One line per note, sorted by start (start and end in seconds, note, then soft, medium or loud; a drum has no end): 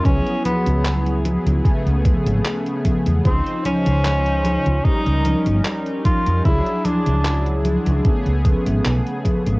0.03 0.20 C#2 medium
0.03 1.57 F#3 medium
0.03 1.57 B3 medium
0.03 0.45 C#4 loud
0.03 1.58 E4 medium
0.03 1.58 G#4 medium
0.03 kick loud
0.03 closed hi-hat medium
0.03 high conga soft
0.26 closed hi-hat soft
0.45 1.21 B3 medium
0.45 closed hi-hat loud
0.45 high conga medium
0.66 1.36 C#2 medium
0.66 closed hi-hat medium
0.66 high conga soft
0.85 clap loud
0.85 closed hi-hat medium
0.85 high conga soft
1.06 closed hi-hat soft
1.25 closed hi-hat medium
1.25 high conga medium
1.46 1.59 C#2 loud
1.46 closed hi-hat medium
1.46 high conga soft
1.64 3.17 C#3 medium
1.64 3.17 A3 medium
1.64 3.18 B3 medium
1.64 3.18 G#4 medium
1.64 kick loud
1.64 closed hi-hat medium
1.64 high conga soft
1.86 2.13 C#2 loud
1.86 closed hi-hat soft
2.05 kick loud
2.05 closed hi-hat medium
2.05 high conga medium
2.26 2.39 G#1 loud
2.26 closed hi-hat medium
2.26 high conga soft
2.45 clap loud
2.45 closed hi-hat medium
2.45 high conga soft
2.66 closed hi-hat soft
2.85 kick medium
2.85 closed hi-hat medium
2.85 high conga medium
3.06 3.19 E2 medium
3.06 closed hi-hat medium
3.06 high conga soft
3.24 3.40 C#2 loud
3.24 4.77 C#3 medium
3.24 4.77 F3 medium
3.24 3.63 C4 medium
3.24 4.78 D#4 medium
3.24 4.78 C5 medium
3.24 kick loud
3.24 closed hi-hat medium
3.46 closed hi-hat soft
3.65 4.86 C#4 loud
3.65 closed hi-hat medium
3.65 high conga medium
3.86 4.56 C#2 medium
3.86 closed hi-hat medium
3.86 high conga soft
4.05 clap loud
4.05 closed hi-hat medium
4.05 high conga soft
4.26 closed hi-hat soft
4.45 closed hi-hat medium
4.45 high conga medium
4.66 4.79 C#2 loud
4.66 closed hi-hat medium
4.66 high conga soft
4.84 6.37 G3 medium
4.84 6.37 C#4 medium
4.84 5.65 D#4 loud
4.84 6.38 D#4 medium
4.84 6.38 A#4 medium
4.84 kick loud
4.84 closed hi-hat medium
4.84 high conga soft
5.06 5.33 C#2 medium
5.06 closed hi-hat soft
5.25 closed hi-hat medium
5.25 high conga medium
5.46 5.59 G1 loud
5.46 closed hi-hat medium
5.46 high conga soft
5.65 clap loud
5.65 closed hi-hat medium
5.65 high conga soft
5.86 closed hi-hat soft
6.05 6.42 F4 loud
6.05 kick loud
6.05 closed hi-hat medium
6.05 high conga medium
6.26 6.39 F2 medium
6.26 closed hi-hat medium
6.26 high conga soft
6.43 6.60 C#2 loud
6.43 7.97 F#3 medium
6.43 7.97 D4 medium
6.43 6.87 E4 loud
6.43 7.98 E4 medium
6.43 7.98 G#4 medium
6.43 kick loud
6.43 closed hi-hat medium
6.43 high conga soft
6.66 closed hi-hat soft
6.85 7.65 D4 medium
6.85 closed hi-hat loud
6.85 high conga medium
7.06 7.76 C#2 medium
7.06 closed hi-hat soft
7.06 high conga soft
7.25 clap loud
7.25 closed hi-hat medium
7.25 high conga soft
7.46 closed hi-hat soft
7.65 closed hi-hat medium
7.65 high conga medium
7.86 7.99 C#2 loud
7.86 closed hi-hat medium
7.86 high conga soft
8.03 9.57 C#3 medium
8.03 9.57 A3 medium
8.03 9.58 B3 medium
8.03 9.58 G#4 medium
8.03 kick loud
8.03 closed hi-hat medium
8.03 high conga soft
8.26 8.53 C#2 medium
8.26 closed hi-hat soft
8.45 kick loud
8.45 closed hi-hat loud
8.45 high conga medium
8.66 8.79 G#1 loud
8.66 closed hi-hat medium
8.66 high conga soft
8.85 9.00 B1 medium
8.85 clap loud
8.85 closed hi-hat medium
8.85 high conga soft
9.06 closed hi-hat soft
9.25 kick medium
9.25 closed hi-hat medium
9.25 high conga medium
9.46 9.59 G#1 medium
9.46 closed hi-hat soft
9.46 high conga soft